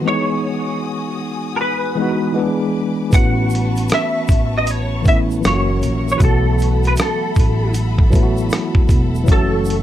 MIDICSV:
0, 0, Header, 1, 6, 480
1, 0, Start_track
1, 0, Key_signature, 4, "major"
1, 0, Tempo, 769231
1, 32, Time_signature, 4, 2, 24, 8
1, 6133, End_track
2, 0, Start_track
2, 0, Title_t, "String section"
2, 0, Program_c, 0, 48
2, 0, Note_on_c, 0, 66, 77
2, 26, Note_on_c, 0, 80, 75
2, 26, Note_on_c, 0, 87, 92
2, 1451, Note_off_c, 0, 66, 0
2, 1455, Note_off_c, 0, 80, 0
2, 1455, Note_off_c, 0, 87, 0
2, 1469, Note_on_c, 0, 71, 72
2, 1475, Note_on_c, 0, 86, 74
2, 1476, Note_on_c, 0, 80, 60
2, 1949, Note_off_c, 0, 86, 0
2, 1950, Note_off_c, 0, 80, 0
2, 1958, Note_on_c, 0, 78, 70
2, 1959, Note_on_c, 0, 81, 72
2, 1960, Note_on_c, 0, 85, 93
2, 3372, Note_off_c, 0, 71, 0
2, 3381, Note_off_c, 0, 81, 0
2, 3382, Note_off_c, 0, 85, 0
2, 3387, Note_on_c, 0, 70, 72
2, 3389, Note_on_c, 0, 85, 81
2, 3391, Note_on_c, 0, 76, 68
2, 3865, Note_off_c, 0, 70, 0
2, 3866, Note_off_c, 0, 85, 0
2, 3871, Note_on_c, 0, 69, 78
2, 3873, Note_on_c, 0, 83, 94
2, 5774, Note_off_c, 0, 83, 0
2, 5783, Note_on_c, 0, 85, 88
2, 6133, Note_off_c, 0, 69, 0
2, 6133, Note_off_c, 0, 76, 0
2, 6133, Note_off_c, 0, 78, 0
2, 6133, Note_off_c, 0, 85, 0
2, 6133, End_track
3, 0, Start_track
3, 0, Title_t, "Clean electric guitar"
3, 0, Program_c, 1, 27
3, 47, Note_on_c, 1, 73, 105
3, 973, Note_off_c, 1, 73, 0
3, 976, Note_on_c, 1, 70, 63
3, 999, Note_off_c, 1, 70, 0
3, 1004, Note_on_c, 1, 71, 89
3, 1693, Note_off_c, 1, 71, 0
3, 1962, Note_on_c, 1, 78, 118
3, 2451, Note_off_c, 1, 78, 0
3, 2458, Note_on_c, 1, 76, 103
3, 2852, Note_off_c, 1, 76, 0
3, 2855, Note_on_c, 1, 75, 84
3, 2934, Note_off_c, 1, 75, 0
3, 2934, Note_on_c, 1, 73, 94
3, 3168, Note_off_c, 1, 73, 0
3, 3171, Note_on_c, 1, 76, 107
3, 3233, Note_off_c, 1, 76, 0
3, 3411, Note_on_c, 1, 73, 91
3, 3809, Note_off_c, 1, 73, 0
3, 3816, Note_on_c, 1, 73, 88
3, 3856, Note_on_c, 1, 71, 65
3, 3857, Note_off_c, 1, 73, 0
3, 3879, Note_off_c, 1, 71, 0
3, 3892, Note_on_c, 1, 69, 90
3, 4255, Note_off_c, 1, 69, 0
3, 4289, Note_on_c, 1, 71, 89
3, 4320, Note_off_c, 1, 71, 0
3, 4376, Note_on_c, 1, 69, 76
3, 4819, Note_off_c, 1, 69, 0
3, 5814, Note_on_c, 1, 69, 100
3, 6133, Note_off_c, 1, 69, 0
3, 6133, End_track
4, 0, Start_track
4, 0, Title_t, "Tine electric piano"
4, 0, Program_c, 2, 4
4, 0, Control_c, 2, 64, 127
4, 10, Note_on_c, 2, 52, 77
4, 20, Note_on_c, 2, 56, 60
4, 33, Note_on_c, 2, 59, 72
4, 40, Control_c, 2, 64, 0
4, 41, Note_on_c, 2, 63, 72
4, 53, Note_on_c, 2, 68, 82
4, 140, Control_c, 2, 64, 127
4, 944, Note_off_c, 2, 52, 0
4, 949, Note_off_c, 2, 56, 0
4, 956, Note_off_c, 2, 59, 0
4, 960, Note_off_c, 2, 63, 0
4, 966, Note_off_c, 2, 68, 0
4, 1220, Note_on_c, 2, 52, 84
4, 1229, Note_on_c, 2, 56, 79
4, 1239, Note_on_c, 2, 59, 77
4, 1250, Note_on_c, 2, 63, 70
4, 1260, Note_on_c, 2, 66, 96
4, 1442, Note_off_c, 2, 52, 0
4, 1449, Note_on_c, 2, 52, 87
4, 1454, Note_off_c, 2, 56, 0
4, 1461, Note_on_c, 2, 56, 79
4, 1465, Note_off_c, 2, 59, 0
4, 1472, Note_on_c, 2, 59, 84
4, 1479, Control_c, 2, 64, 0
4, 1481, Note_off_c, 2, 63, 0
4, 1483, Note_on_c, 2, 62, 89
4, 1486, Note_off_c, 2, 66, 0
4, 1494, Note_on_c, 2, 68, 86
4, 1598, Control_c, 2, 64, 127
4, 1923, Note_off_c, 2, 52, 0
4, 1929, Note_off_c, 2, 56, 0
4, 1934, Note_off_c, 2, 59, 0
4, 1934, Note_on_c, 2, 52, 69
4, 1940, Note_off_c, 2, 62, 0
4, 1943, Note_on_c, 2, 57, 70
4, 1945, Note_off_c, 2, 68, 0
4, 1955, Note_on_c, 2, 59, 75
4, 1960, Control_c, 2, 64, 0
4, 1965, Note_on_c, 2, 61, 74
4, 1976, Note_on_c, 2, 66, 80
4, 2066, Control_c, 2, 64, 127
4, 2866, Note_off_c, 2, 52, 0
4, 2871, Note_off_c, 2, 57, 0
4, 2877, Note_off_c, 2, 59, 0
4, 2882, Note_off_c, 2, 61, 0
4, 2887, Note_off_c, 2, 66, 0
4, 3134, Note_on_c, 2, 52, 67
4, 3143, Note_on_c, 2, 57, 71
4, 3155, Note_on_c, 2, 59, 68
4, 3165, Note_on_c, 2, 61, 68
4, 3178, Note_on_c, 2, 64, 81
4, 3364, Note_off_c, 2, 52, 0
4, 3372, Note_on_c, 2, 52, 68
4, 3380, Note_on_c, 2, 54, 69
4, 3388, Note_off_c, 2, 57, 0
4, 3393, Note_on_c, 2, 58, 68
4, 3394, Note_off_c, 2, 59, 0
4, 3395, Note_off_c, 2, 61, 0
4, 3402, Control_c, 2, 64, 0
4, 3402, Note_on_c, 2, 61, 70
4, 3405, Note_off_c, 2, 64, 0
4, 3414, Note_on_c, 2, 65, 70
4, 3454, Note_on_c, 2, 66, 78
4, 3457, Note_off_c, 2, 65, 0
4, 3515, Control_c, 2, 64, 127
4, 3837, Note_off_c, 2, 52, 0
4, 3845, Note_on_c, 2, 52, 81
4, 3848, Note_off_c, 2, 54, 0
4, 3855, Note_off_c, 2, 58, 0
4, 3855, Note_on_c, 2, 54, 74
4, 3859, Note_off_c, 2, 61, 0
4, 3867, Note_on_c, 2, 57, 65
4, 3877, Note_on_c, 2, 59, 72
4, 3880, Note_off_c, 2, 66, 0
4, 3880, Control_c, 2, 64, 0
4, 3888, Note_on_c, 2, 66, 79
4, 3998, Control_c, 2, 64, 127
4, 4782, Note_off_c, 2, 52, 0
4, 4787, Note_off_c, 2, 54, 0
4, 4793, Note_off_c, 2, 57, 0
4, 4798, Note_off_c, 2, 59, 0
4, 4803, Note_off_c, 2, 66, 0
4, 5053, Note_on_c, 2, 52, 92
4, 5063, Note_on_c, 2, 54, 79
4, 5074, Note_on_c, 2, 57, 86
4, 5086, Note_on_c, 2, 59, 74
4, 5094, Note_on_c, 2, 64, 83
4, 5136, Note_off_c, 2, 64, 0
4, 5136, Note_on_c, 2, 66, 93
4, 5755, Note_off_c, 2, 52, 0
4, 5760, Note_off_c, 2, 54, 0
4, 5765, Note_on_c, 2, 52, 83
4, 5766, Note_off_c, 2, 57, 0
4, 5772, Note_off_c, 2, 59, 0
4, 5776, Note_on_c, 2, 54, 78
4, 5786, Note_on_c, 2, 57, 72
4, 5796, Note_on_c, 2, 61, 68
4, 5797, Note_off_c, 2, 66, 0
4, 5800, Control_c, 2, 64, 0
4, 5807, Note_on_c, 2, 66, 81
4, 5906, Control_c, 2, 64, 127
4, 6133, Note_off_c, 2, 52, 0
4, 6133, Note_off_c, 2, 54, 0
4, 6133, Note_off_c, 2, 57, 0
4, 6133, Note_off_c, 2, 61, 0
4, 6133, Note_off_c, 2, 66, 0
4, 6133, End_track
5, 0, Start_track
5, 0, Title_t, "Upright bass"
5, 0, Program_c, 3, 32
5, 1956, Note_on_c, 3, 33, 97
5, 2409, Note_off_c, 3, 33, 0
5, 2677, Note_on_c, 3, 33, 86
5, 3370, Note_off_c, 3, 33, 0
5, 3399, Note_on_c, 3, 30, 98
5, 3622, Note_off_c, 3, 30, 0
5, 3634, Note_on_c, 3, 34, 81
5, 3860, Note_off_c, 3, 34, 0
5, 3872, Note_on_c, 3, 35, 108
5, 4327, Note_off_c, 3, 35, 0
5, 4597, Note_on_c, 3, 33, 101
5, 5290, Note_off_c, 3, 33, 0
5, 5550, Note_on_c, 3, 28, 89
5, 5794, Note_off_c, 3, 28, 0
5, 5794, Note_on_c, 3, 30, 96
5, 6133, Note_off_c, 3, 30, 0
5, 6133, End_track
6, 0, Start_track
6, 0, Title_t, "Drums"
6, 1947, Note_on_c, 9, 82, 63
6, 1951, Note_on_c, 9, 36, 109
6, 1957, Note_on_c, 9, 42, 80
6, 2009, Note_off_c, 9, 82, 0
6, 2014, Note_off_c, 9, 36, 0
6, 2019, Note_off_c, 9, 42, 0
6, 2183, Note_on_c, 9, 82, 50
6, 2215, Note_on_c, 9, 42, 64
6, 2245, Note_off_c, 9, 82, 0
6, 2277, Note_off_c, 9, 42, 0
6, 2346, Note_on_c, 9, 82, 45
6, 2356, Note_on_c, 9, 42, 45
6, 2408, Note_off_c, 9, 82, 0
6, 2419, Note_off_c, 9, 42, 0
6, 2424, Note_on_c, 9, 82, 73
6, 2431, Note_on_c, 9, 42, 81
6, 2446, Note_on_c, 9, 37, 106
6, 2486, Note_off_c, 9, 82, 0
6, 2494, Note_off_c, 9, 42, 0
6, 2509, Note_off_c, 9, 37, 0
6, 2670, Note_on_c, 9, 82, 48
6, 2676, Note_on_c, 9, 36, 79
6, 2694, Note_on_c, 9, 42, 63
6, 2732, Note_off_c, 9, 82, 0
6, 2738, Note_off_c, 9, 36, 0
6, 2756, Note_off_c, 9, 42, 0
6, 2914, Note_on_c, 9, 42, 90
6, 2914, Note_on_c, 9, 82, 63
6, 2976, Note_off_c, 9, 42, 0
6, 2976, Note_off_c, 9, 82, 0
6, 3150, Note_on_c, 9, 82, 50
6, 3154, Note_on_c, 9, 36, 90
6, 3168, Note_on_c, 9, 42, 62
6, 3212, Note_off_c, 9, 82, 0
6, 3217, Note_off_c, 9, 36, 0
6, 3230, Note_off_c, 9, 42, 0
6, 3312, Note_on_c, 9, 82, 40
6, 3374, Note_off_c, 9, 82, 0
6, 3390, Note_on_c, 9, 82, 66
6, 3401, Note_on_c, 9, 37, 98
6, 3402, Note_on_c, 9, 42, 84
6, 3452, Note_off_c, 9, 82, 0
6, 3464, Note_off_c, 9, 37, 0
6, 3464, Note_off_c, 9, 42, 0
6, 3634, Note_on_c, 9, 82, 53
6, 3637, Note_on_c, 9, 42, 59
6, 3696, Note_off_c, 9, 82, 0
6, 3700, Note_off_c, 9, 42, 0
6, 3797, Note_on_c, 9, 82, 52
6, 3859, Note_off_c, 9, 82, 0
6, 3869, Note_on_c, 9, 82, 60
6, 3870, Note_on_c, 9, 36, 113
6, 3872, Note_on_c, 9, 42, 82
6, 3931, Note_off_c, 9, 82, 0
6, 3932, Note_off_c, 9, 36, 0
6, 3934, Note_off_c, 9, 42, 0
6, 4110, Note_on_c, 9, 82, 51
6, 4131, Note_on_c, 9, 42, 59
6, 4173, Note_off_c, 9, 82, 0
6, 4193, Note_off_c, 9, 42, 0
6, 4264, Note_on_c, 9, 82, 45
6, 4276, Note_on_c, 9, 42, 45
6, 4326, Note_off_c, 9, 82, 0
6, 4338, Note_off_c, 9, 42, 0
6, 4345, Note_on_c, 9, 82, 72
6, 4351, Note_on_c, 9, 42, 82
6, 4366, Note_on_c, 9, 37, 100
6, 4408, Note_off_c, 9, 82, 0
6, 4413, Note_off_c, 9, 42, 0
6, 4428, Note_off_c, 9, 37, 0
6, 4588, Note_on_c, 9, 82, 47
6, 4595, Note_on_c, 9, 36, 80
6, 4614, Note_on_c, 9, 42, 65
6, 4650, Note_off_c, 9, 82, 0
6, 4657, Note_off_c, 9, 36, 0
6, 4676, Note_off_c, 9, 42, 0
6, 4830, Note_on_c, 9, 82, 68
6, 4832, Note_on_c, 9, 42, 82
6, 4892, Note_off_c, 9, 82, 0
6, 4895, Note_off_c, 9, 42, 0
6, 4983, Note_on_c, 9, 36, 96
6, 5045, Note_off_c, 9, 36, 0
6, 5068, Note_on_c, 9, 82, 47
6, 5073, Note_on_c, 9, 36, 87
6, 5088, Note_on_c, 9, 42, 62
6, 5131, Note_off_c, 9, 82, 0
6, 5135, Note_off_c, 9, 36, 0
6, 5150, Note_off_c, 9, 42, 0
6, 5225, Note_on_c, 9, 82, 41
6, 5287, Note_off_c, 9, 82, 0
6, 5304, Note_on_c, 9, 82, 61
6, 5322, Note_on_c, 9, 37, 102
6, 5322, Note_on_c, 9, 42, 81
6, 5367, Note_off_c, 9, 82, 0
6, 5384, Note_off_c, 9, 37, 0
6, 5384, Note_off_c, 9, 42, 0
6, 5459, Note_on_c, 9, 36, 83
6, 5521, Note_off_c, 9, 36, 0
6, 5547, Note_on_c, 9, 36, 91
6, 5547, Note_on_c, 9, 82, 51
6, 5557, Note_on_c, 9, 42, 59
6, 5609, Note_off_c, 9, 36, 0
6, 5610, Note_off_c, 9, 82, 0
6, 5619, Note_off_c, 9, 42, 0
6, 5710, Note_on_c, 9, 82, 52
6, 5772, Note_off_c, 9, 82, 0
6, 5782, Note_on_c, 9, 82, 62
6, 5792, Note_on_c, 9, 36, 109
6, 5797, Note_on_c, 9, 42, 77
6, 5844, Note_off_c, 9, 82, 0
6, 5854, Note_off_c, 9, 36, 0
6, 5860, Note_off_c, 9, 42, 0
6, 6022, Note_on_c, 9, 82, 54
6, 6054, Note_on_c, 9, 42, 65
6, 6084, Note_off_c, 9, 82, 0
6, 6116, Note_off_c, 9, 42, 0
6, 6133, End_track
0, 0, End_of_file